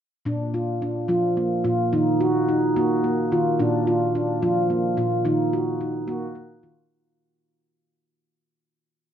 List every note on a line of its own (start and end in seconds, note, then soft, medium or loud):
0.25 0.91 A#2 medium
0.25 0.54 D4 medium
0.54 0.82 F4 medium
0.82 1.10 D4 medium
1.08 1.53 F3 medium
1.08 1.37 F4 medium
1.37 1.65 A#3 medium
1.64 1.87 A#2 medium
1.64 1.93 F4 medium
1.93 2.58 D#3 medium
1.93 2.21 D#4 medium
2.21 2.48 F#4 medium
2.49 2.76 D#4 medium
2.76 3.03 A#3 medium
2.76 3.04 F#4 medium
3.04 3.32 A#3 medium
3.32 3.54 D#3 medium
3.32 3.60 F4 medium
3.59 4.25 A#2 medium
3.59 3.87 D4 medium
3.87 4.15 F4 medium
4.15 4.43 D4 medium
4.42 4.86 F3 medium
4.42 4.70 F4 medium
4.70 4.98 A#3 medium
4.97 5.19 A#2 medium
4.97 5.26 F4 medium
5.25 5.91 D#3 medium
5.25 5.53 D#4 medium
5.53 5.81 F#4 medium
5.81 6.09 D#4 medium
6.08 6.34 A#3 medium
6.08 6.36 F#4 medium
6.35 6.64 A#3 medium
6.63 6.85 D#3 medium
6.63 6.91 F4 medium